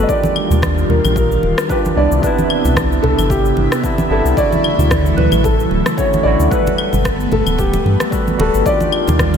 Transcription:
Already playing: G3 F#4 A4 B4
0.03 D#3 D#5
0.08 D#3 G3 D4 F4 D5, kick, cabasa
0.12 G4
0.23 high conga, cabasa
0.36 claves
0.50 D#2, low conga, cabasa
0.62 kick, cross-stick, high conga, cabasa
0.78 cabasa
0.89 D#2 A#4, low conga
1.04 A#1, high conga, cabasa, claves
1.16 A#4, kick, cabasa
1.32 cabasa
1.43 D#1, high conga
1.58 cross-stick, cabasa
1.68 D#3 D4 F4 G4 B4, kick, cabasa
1.85 high conga, cabasa
1.94 C2 C3 B3 D4 E4 D5
2.11 C2, cabasa
2.20 C3 B3, kick, cabasa
2.24 D4 E4 B4
2.38 high conga, cabasa
2.50 claves
2.64 C2, low conga, cabasa
2.77 kick, cross-stick, high conga, cabasa
2.92 cabasa
3.02 C2 A4, low conga
3.18 G1, high conga, cabasa, claves
3.30 G4, kick, cabasa
3.45 cabasa
3.57 G1, high conga
3.72 cross-stick, cabasa
3.82 C3 B3 D4 E4, kick, cabasa
3.98 high conga, cabasa
4.08 G1 C3 B3 D4 E4 A4
4.24 C2, cabasa
4.34 C#3 D3 E3 F#3 A3 D5, kick
4.38 E4 F#4, cabasa
4.52 high conga, cabasa
4.64 claves
4.78 D2, low conga, cabasa
4.91 kick, cross-stick, high conga, cabasa
5.06 cabasa
5.17 D2 B4, low conga
5.32 A1, high conga, cabasa, claves
5.44 A4, kick, cabasa
5.60 cabasa
5.70 D1, high conga
5.86 cross-stick, cabasa
5.96 D3 C#4 E4 F#4 C#5, kick, cabasa
6.13 high conga, cabasa
6.23 A1 D3 C#4 E4 D5
6.27 F#4
6.39 D2, cabasa
6.48 G3 A3 B3 B4 F#5, kick, cabasa
6.53 A4 B4
6.67 muted conga, high conga, cabasa
6.78 claves
6.93 G1, low conga, cabasa
7.04 kick, cross-stick, muted conga, high conga, cabasa
7.20 cabasa
7.31 G1 A4, muted conga, low conga
7.46 D1, high conga, cabasa, claves
7.59 G4, kick, cabasa
7.74 muted conga, cabasa
7.85 G2, high conga
8.00 cross-stick, muted conga, cabasa
8.11 G3 F#4 A4 B4, kick, cabasa
8.27 high conga, cabasa
8.37 D1 G3 F#4 A4 B4, muted conga
8.54 G1, cabasa
8.62 D#3 D4 F4, kick
8.66 G3 D4 F4 G4 D5, muted conga, cabasa
8.81 high conga, cabasa
8.92 claves
9.08 D#2, muted conga, low conga, cabasa
9.19 kick, cross-stick, high conga, cabasa
9.34 muted conga

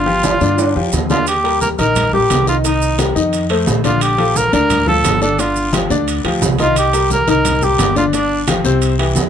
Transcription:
Already playing: G1 F4
0.06 F3 F4 G4, high conga
0.24 high conga, high timbale, short guiro, maracas
0.41 G2 D3 D4 D5, high conga, short guiro, maracas
0.58 D3 D4 D5, high conga, high timbale, long guiro, maracas
0.76 F2 F3 F4 G4, high conga
0.92 D#2, high conga, low timbale, short guiro, maracas
1.10 D3 D4 F4 D5, high conga, low timbale, short guiro, maracas
1.27 G4, high conga, high timbale, long guiro, maracas
1.44 G3 G4 A#4, high conga, high timbale
1.61 A#4, high conga, low timbale, short guiro, maracas
1.78 A#1 D#3 D#4 A#4 D#5, high timbale, short guiro, maracas
1.96 high conga, low conga, high timbale, long guiro, maracas
2.13 G3 G4 A#4, high conga, low conga
2.30 C2, high conga, high timbale, low timbale, short guiro, maracas
2.47 D#3 D#4 F4 D#5, short guiro, maracas
2.64 D#3 D#4 D#5, high conga, high timbale, long guiro, maracas
2.82 high conga, maracas
2.98 G3 G4 A#4, high conga, high timbale, low timbale, short guiro, maracas
3.15 F2 D#3 D#4 D#5, high conga, short guiro, maracas
3.33 high conga, high timbale, long guiro, maracas
3.50 A3 A4 C5, high conga, high timbale
3.67 A#1, high conga, low timbale, short guiro, maracas
3.84 D3 D4 F4 D5, high conga, high timbale, short guiro, maracas
4.01 G4, high conga, high timbale, long guiro, maracas
4.18 F3 F4 A4, high conga, high timbale
4.36 A#4, high conga, low timbale, short guiro, maracas
4.53 D2 D3 D4 A#4 D5, high timbale, short guiro, maracas
4.70 high conga, low conga, high timbale, long guiro, maracas
4.87 F3 F4 A4, high conga, low conga
5.04 G1, high conga, high timbale, low timbale, short guiro, maracas
5.21 D3 D4 A4 D5, short guiro, maracas
5.39 D3 D4 F4 D5, high timbale, long guiro, maracas
5.56 high conga, maracas
5.73 F3 F4 G4, high conga, high timbale, low timbale, short guiro, maracas
5.90 D2 D3 D4 D5, high conga, short guiro, maracas
6.07 high conga, high timbale, long guiro, maracas
6.24 D2 F3 F4 G4, high conga, high timbale
6.42 C2, high conga, low timbale, short guiro, maracas
6.59 D#3 D#4 F4 D#5, high conga, high timbale, short guiro, maracas
6.76 G4, high conga, high timbale, long guiro, maracas
6.93 G3 G4 A#4, high conga, high timbale, maracas
7.10 A#4, high conga, low timbale, short guiro, maracas
7.27 C2 D#3 D#4 A#4 D#5, high timbale, short guiro, maracas
7.45 high conga, low conga, high timbale, long guiro, maracas
7.62 G3 G4 A#4, high conga, low conga, maracas
7.79 G1, high conga, high timbale, low timbale, short guiro, maracas
7.96 D3 D4 F4 D5, high conga, short guiro, maracas
8.13 D3 D4 D5, high conga, high timbale, long guiro, maracas
8.31 high conga
8.47 F3 F4 G4, high conga, high timbale, low timbale, short guiro, maracas
8.64 C2 C3 C4 C5, high conga, short guiro, maracas
8.82 high conga, high timbale, long guiro, maracas
8.99 E3 E4 G4, high conga, high timbale
9.15 F2, high conga, low timbale, short guiro, maracas

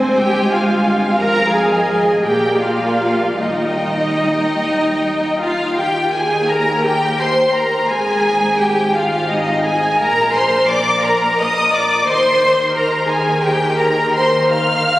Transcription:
Already playing: F1 G#3 C4 C5 G#5
0.17 G1 G4 G5
0.51 F4 F5
1.19 G#1 F3 A#4 F5 A#5
1.52 G#4 G#5
1.72 D#5
2.23 A#1 A#3 G4 D5 G5
2.60 F4 F5
3.38 D#2 G3 D#4 D#5 G5
5.39 F4 F5
5.78 D#2 G4 G5
6.15 G#4 G#5
6.50 A#4 A#5
6.84 G4 G5
7.20 C5 C6
7.55 A#4 A#5
7.90 G#1 G#2 G#4 G#5
8.59 G4 G5
8.94 F4 F5
9.29 D#4 D#5
9.64 G#4 G#5
9.98 A#1 A#2 A#4 A#5
10.34 C5 C6
10.68 D5 D6
11.02 A#4 A#5
11.38 D#5 D#6
11.72 D5 D6
12.06 D#2 D#3 C5 C6
12.74 A#4 A#5
13.08 G#4 G#5
13.41 G4 G5
13.77 A#4 A#5
14.15 C5 C6
14.51 F5 F6

